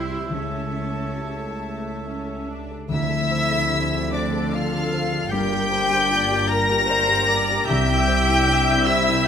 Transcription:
Already playing: C2 G3 E4 F4 G4 C5 E5 C6
0.10 G4
0.30 C#2 A3 C#4 C#5 A5
0.34 E5
0.52 A4
0.75 E5
0.95 A4
1.16 G4
1.39 A4
1.59 A3 E5
1.82 A4
2.05 C#4 E5
2.26 A4
2.48 D4 E5
2.70 A4
2.88 D2 D3 F3 C4 E4 E5 E6
3.09 A4
3.31 C5
3.51 A4
3.71 G4
3.93 A4
4.12 D4 A4 C5 D5 D6
4.33 A4
4.51 F4 D5 F5 F6
4.73 A4
4.93 C5
5.13 A4
5.30 G1 G2 A#3 D4 G4 A#4 G5 G6
5.52 G4
5.71 A#4 C5
5.91 G4
6.11 F4 D5
6.30 G4
6.48 A#4 A#5 A#6
6.69 G4
6.89 C5 D5
7.08 G4
7.28 A#4 D5
7.50 G4
7.66 C2 C3 C4 E4 G4 E5 G5 G6
7.70 C2
7.89 E4
8.08 C5
8.29 E4
8.48 D4
8.70 E4
8.86 E4 C5 E5 E6
9.08 E4

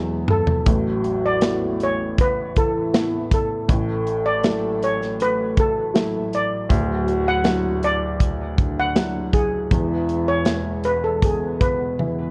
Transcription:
Already playing: E1 E2 F#3 G#3 B3 E4 G#4 E5
0.28 A4, mid tom
0.47 floor tom
0.66 A1 A2 F#3 F#4, kick, closed hi-hat
1.04 closed hi-hat
1.25 D5
1.41 A3 B3 E4, snare, closed hi-hat
1.80 C#5, closed hi-hat
2.18 B4, kick, closed hi-hat
2.56 E3 E4 A4, kick, closed hi-hat
2.94 A3 B3 E4, snare, closed hi-hat
3.32 A4, kick, closed hi-hat
3.69 A1 A2 A3 A4, kick, closed hi-hat
4.07 closed hi-hat
4.26 D5
4.44 F#3 A3 E4, snare, closed hi-hat
4.83 C#5, closed hi-hat
5.02 snare
5.20 B4, closed hi-hat
5.57 A4, kick, closed hi-hat
5.94 F#3 A3 E4, snare, closed hi-hat
6.33 D5, closed hi-hat
6.69 D1 D2 F#3 F#4, kick, closed hi-hat
7.08 closed hi-hat
7.28 F#5
7.44 F#3 D4 E4, snare, closed hi-hat
7.83 D5, closed hi-hat
8.20 kick, closed hi-hat
8.58 D3 D4, kick, closed hi-hat
8.80 F#5
8.96 F#3 D4 E4, snare, closed hi-hat
9.33 G#4, kick, closed hi-hat
9.71 E1 E2 E3 E4, kick, closed hi-hat
10.09 closed hi-hat
10.28 C#5
10.45 G#3 B3 E4, snare, closed hi-hat
10.84 B4, closed hi-hat
11.04 A4
11.22 B2 B3 G#4, kick, closed hi-hat
11.61 B4, kick, closed hi-hat
11.99 E3 B3 E4, high tom

